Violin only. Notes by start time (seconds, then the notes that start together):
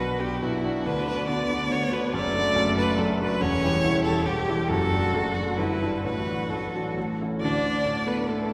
Already playing: B4
0.20 G4
0.42 F#4
0.86 B4
1.08 B4
1.28 D5
1.72 C#5
1.93 B4
2.15 D5
2.78 B4
2.99 A4
3.20 B4
3.41 C#5
4.04 A4
4.25 G4
4.69 A4
5.34 F#4
5.58 B4
6.04 B4
6.49 A4
7.41 D5
8.07 B4
8.29 A4